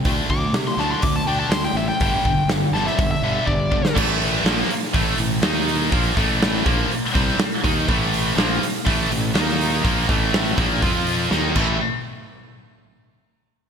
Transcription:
<<
  \new Staff \with { instrumentName = "Lead electric guitar" } { \time 4/4 \key d \dorian \tempo 4 = 122 r8 d'''8 r16 c'''16 a''16 c'''16 d'''16 a''16 g''16 a''16 c'''16 g''16 e''16 g''16 | g''4 r8 a''16 e''8 e''8. d''4 | r1 | r1 |
r1 | r1 | r1 | }
  \new Staff \with { instrumentName = "Distorted electric guitar" } { \clef bass \time 4/4 \key d \dorian r1 | r1 | <a, e a>4 <bes, f bes>8 r8 <a, e a>8 <a, e>8 <dis ais dis'>4 | <bes, f bes>8 <a, e a>4 <bes, f bes>8 r8 <c g c'>8 r8 <dis bes dis'>8 |
<a, e a>4 <bes, f bes>8 r8 <a, e a>8 <a, e>8 <dis ais dis'>4 | <bes, f bes>8 <a, e a>4 <bes, f bes>8 <f c' f'>4 <dis ais dis'>8 <a, e a c' e' a'>8 | r1 | }
  \new Staff \with { instrumentName = "Distorted electric guitar" } { \clef bass \time 4/4 \key d \dorian <d a d'>8 <d a>8 <d a>8 <d a d'>8 <d a>8 <d a d'>8 <d a>8 <d a>8 | <g, d g>8 <g, d>8 <g, d>8 <g, d g>8 <g, d>8 <g, d g>8 <g, d>8 <g, d>8 | <a, e a>4 <bes, f bes>8 r8 <a, e a>8 <a, e>8 <dis ais dis'>4 | <bes, f bes>8 <a, e a>4 <bes, f bes>8 r8 <c g c'>8 r8 <dis bes dis'>8 |
<a, e a>4 <bes, f bes>8 r8 <a, e a>8 <a, e>8 <dis ais dis'>4 | <bes, f bes>8 <a, e a>4 <bes, f bes>8 <f c' f'>4 <dis ais dis'>8 <a, e a>8 | r1 | }
  \new Staff \with { instrumentName = "Fingered electric bass" } { \clef bass \time 4/4 \key d \dorian d,8 d,8 c8 d,8 d,8 d,8 d,8 a,,8 | g,,8 g,,8 g,,8 g,,8 g,,8 g,,8 g,,4 | a,,4 bes,,8 r8 a,,8 a,,8 dis,4 | bes,,8 a,,4 bes,,8 r8 c,8 r8 dis,8 |
a,,4 bes,,8 r8 a,,8 a,,8 dis,4 | bes,,8 a,,4 bes,,8 f,4 dis,8 a,,8 | r1 | }
  \new DrumStaff \with { instrumentName = "Drums" } \drummode { \time 4/4 <hho bd>8 bd8 <hho sn>8 sn8 <hho bd>4 <hho sn>4 | <hho bd>8 bd8 <hho sn>8 sn16 sn16 <hho bd>4 bd8 bd16 sn16 | <cymc bd>8 hho8 <hho sn>8 hho16 sn16 <hho bd>8 hho8 <hho sn>8 hho8 | <hho bd>8 <hho bd>8 <hho sn>8 <hho bd>8 hho8 <hho bd>8 <hho sn>8 <hho bd>8 |
<hho bd>8 hho8 <hho sn>8 <hho sn>8 <hho bd>8 hho8 <hho sn>8 hho8 | <hho bd>8 <hho bd>8 <hho sn>8 <hho bd>8 <hho bd>8 hho8 sn8 <cymc bd>8 | r4 r4 r4 r4 | }
>>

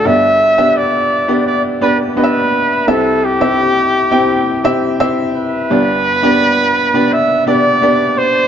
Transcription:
<<
  \new Staff \with { instrumentName = "Trumpet" } { \time 4/4 \key g \major \tempo 4 = 85 e''4 d''4 d''8 b'8 b'4 | a'8 g'2~ g'8 r8 b'8~ | b'2 e''8 d''4 c''8 | }
  \new Staff \with { instrumentName = "Upright piano" } { \time 4/4 \key g \major <b d' g' d''>8 r16 <b d' g' e''>8. r16 <b d' g' d''>8 r16 <b d' g' d''>8 <b d' g' dis'' e''>8. r16 | <c' e' g' e''>8 r16 <c' e' g' e''>8. r16 <c' e' g' g''>8 r16 <c' e' g' e''>8 <c' e' g' e''>8. r16 | <b d' g' d''>8 r16 <b d' g' d''>8. r16 <b d' g' d''>8 r16 <b d' g' d''>8 <b d' g' d''>8. r16 | }
  \new Staff \with { instrumentName = "Upright piano" } { \clef bass \time 4/4 \key g \major <g,, g,>1 | <c, c>1 | <g,, g,>1 | }
>>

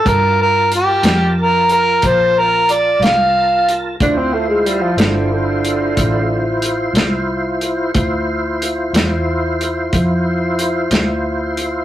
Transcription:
<<
  \new Staff \with { instrumentName = "Harmonica" } { \time 12/8 \key d \minor \tempo 4. = 61 bes'8 bes'8 g'4 bes'8 bes'8 c''8 bes'8 d''8 f''4 r8 | r1. | r1. | }
  \new Staff \with { instrumentName = "Tonewheel organ" } { \time 12/8 \key d \minor <f' bes' a''>1. | <e' f' c''>1. | <e' f' c''>1. | }
  \new Staff \with { instrumentName = "Tenor saxophone" } { \clef bass \time 12/8 \key d \minor r1. | d'16 c'16 a16 gis16 g16 f16 d8 d2 r2 | r1. | }
  \new Staff \with { instrumentName = "Fingered electric bass" } { \clef bass \time 12/8 \key d \minor g,4. f,4. bes,,4. c,4. | d,4. g,,4. a,,4. c,4. | d,4. e,4. f,4. d,4. | }
  \new DrumStaff \with { instrumentName = "Drums" } \drummode { \time 12/8 <hh bd>4 hh8 <hh sn>4 hh8 <hh bd>4 hh8 <hh sn>4 hh8 | <hh bd>4 hh8 <hh sn>4 hh8 <hh bd>4 hh8 <hh sn>4 hh8 | <hh bd>4 hh8 <hh sn>4 hh8 <hh bd>4 hh8 <hh sn>4 hh8 | }
>>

